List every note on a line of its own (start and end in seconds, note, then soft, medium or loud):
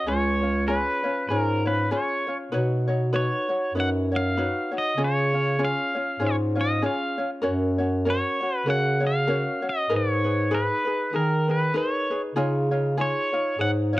0.06 0.86 C#2 medium
0.06 0.42 C#4 medium
0.06 0.42 F4 medium
0.06 0.42 G#4 medium
0.06 0.40 C#5 medium
0.06 0.71 C#5 medium
0.42 0.67 C#4 soft
0.42 0.67 F4 soft
0.42 0.68 C#5 soft
0.67 1.04 C#4 medium
0.67 1.03 F4 medium
0.67 1.03 G#4 medium
0.67 1.31 B4 medium
0.67 1.02 C#5 medium
1.04 1.29 C#4 soft
1.04 1.30 F4 soft
1.04 1.29 C#5 medium
1.29 1.94 G#2 medium
1.29 1.65 C#4 medium
1.29 1.66 F4 medium
1.29 1.65 G#4 medium
1.29 1.66 A#4 medium
1.29 1.64 C#5 medium
1.65 1.91 C#4 soft
1.65 1.90 F4 soft
1.65 1.92 B4 medium
1.65 1.91 C#5 medium
1.91 2.27 C#4 medium
1.91 2.27 F4 medium
1.91 2.26 G#4 medium
1.91 2.26 C#5 medium
1.91 2.37 C#5 medium
2.27 2.52 C#4 soft
2.27 2.52 F4 soft
2.27 2.53 C#5 soft
2.51 3.32 B2 medium
2.51 2.88 D#4 medium
2.51 2.87 F#4 medium
2.51 2.88 B4 medium
2.51 2.86 C#5 medium
2.88 3.12 D#4 soft
2.88 3.12 F#4 soft
2.88 3.12 C#5 medium
3.13 3.49 D#4 medium
3.13 3.49 F#4 medium
3.13 3.49 B4 medium
3.13 3.48 C#5 medium
3.13 3.72 C#5 medium
3.49 3.74 D#4 soft
3.49 3.75 F#4 soft
3.49 3.75 C#5 soft
3.74 4.54 F#2 medium
3.74 4.11 D#4 medium
3.74 4.12 F#4 medium
3.74 4.11 B4 medium
3.74 4.10 C#5 medium
3.80 3.89 F#5 medium
4.12 4.36 D#4 soft
4.12 4.37 F#4 soft
4.12 4.37 C#5 medium
4.16 4.71 F5 loud
4.37 4.72 D#4 medium
4.37 4.71 F#4 medium
4.37 4.73 B4 medium
4.37 4.70 C#5 medium
4.71 4.98 D#4 soft
4.71 4.97 F#4 soft
4.71 4.97 C#5 soft
4.78 5.02 D#5 medium
4.97 5.77 C#3 medium
4.97 5.34 C#4 medium
4.97 5.33 F4 medium
4.97 5.33 G#4 medium
4.97 5.32 C#5 medium
5.04 5.65 C#5 medium
5.33 5.58 C#4 soft
5.33 5.58 F4 soft
5.33 5.58 C#5 soft
5.59 5.95 C#4 medium
5.59 5.95 F4 medium
5.59 5.95 G#4 medium
5.59 5.93 C#5 medium
5.65 6.26 F5 medium
5.95 6.19 C#4 soft
5.95 6.19 F4 soft
5.95 6.20 C#5 soft
6.20 6.85 G#2 medium
6.20 6.56 C#4 medium
6.20 6.55 F4 medium
6.20 6.56 G#4 medium
6.20 6.54 C#5 medium
6.27 6.35 C#5 medium
6.55 6.81 C#4 soft
6.55 6.82 F4 soft
6.55 6.82 C#5 soft
6.61 6.86 D#5 medium
6.82 7.18 C#4 medium
6.82 7.18 F4 medium
6.82 7.18 G#4 medium
6.82 7.17 C#5 medium
6.82 7.30 F5 medium
7.18 7.41 C#4 soft
7.18 7.42 F4 soft
7.18 7.42 C#5 soft
7.42 8.24 F#2 medium
7.42 7.79 C#4 medium
7.42 7.78 F#4 medium
7.42 7.78 A#4 medium
7.42 7.77 C#5 medium
7.78 8.05 C#4 soft
7.78 8.05 F#4 medium
7.78 8.05 C#5 medium
8.05 8.41 C#4 medium
8.05 8.42 F#4 medium
8.05 8.41 A#4 medium
8.05 8.39 C#5 medium
8.10 8.57 C#5 medium
8.41 8.66 C#4 soft
8.41 8.66 F#4 soft
8.41 8.67 C#5 medium
8.57 8.71 B4 medium
8.66 9.46 C#3 medium
8.66 9.01 C#4 medium
8.66 9.00 F#4 medium
8.66 9.02 A#4 medium
8.66 8.99 C#5 medium
8.70 9.05 F#5 medium
9.00 9.27 C#4 soft
9.00 9.26 F#4 soft
9.00 9.28 C#5 medium
9.07 9.68 F5 loud
9.27 9.62 C#4 medium
9.27 9.61 F#4 medium
9.27 9.63 A#4 medium
9.27 9.61 C#5 medium
9.62 9.90 C#4 soft
9.62 9.89 F#4 soft
9.62 9.89 C#5 medium
9.69 9.94 D#5 medium
9.89 10.70 G#2 medium
9.89 10.25 D#4 medium
9.89 10.24 G#4 medium
9.89 10.24 A#4 medium
9.89 10.23 B4 medium
9.96 10.57 C#5 medium
10.24 10.50 D#4 soft
10.24 10.50 G#4 soft
10.24 10.50 B4 medium
10.51 10.86 D#4 medium
10.51 10.86 G#4 medium
10.51 10.84 B4 medium
10.51 11.16 B4 medium
10.85 11.12 D#4 soft
10.85 11.13 G#4 medium
10.85 11.12 B4 medium
11.13 11.78 D#3 medium
11.13 11.48 D#4 medium
11.13 11.48 G#4 medium
11.13 11.47 A#4 medium
11.13 11.51 A#4 medium
11.48 11.73 D#4 soft
11.48 11.74 G#4 medium
11.48 11.73 B4 soft
11.48 11.77 B4 medium
11.74 12.10 D#4 medium
11.74 12.10 G#4 medium
11.74 12.10 A#4 medium
11.74 12.09 B4 medium
11.74 12.21 C#5 medium
12.10 12.35 D#4 soft
12.10 12.35 G#4 soft
12.10 12.35 B4 soft
12.35 13.15 C#3 medium
12.35 12.72 D#4 medium
12.35 12.70 F4 medium
12.35 12.71 G#4 medium
12.35 12.70 C#5 medium
12.71 12.96 D#4 soft
12.71 12.97 F4 soft
12.71 12.97 C#5 medium
12.97 13.33 D#4 medium
12.97 13.32 F4 medium
12.97 13.33 G#4 medium
12.97 13.31 C#5 medium
12.97 13.63 C#5 medium
13.33 13.58 D#4 soft
13.33 13.58 F4 soft
13.33 13.59 C#5 medium
13.58 14.00 G#2 medium
13.58 13.94 D#4 medium
13.58 13.94 G#4 medium
13.58 13.92 C#5 medium
13.58 13.70 F#5 loud
13.93 14.00 D#4 soft
13.93 14.00 F4 soft
13.93 14.00 C#5 medium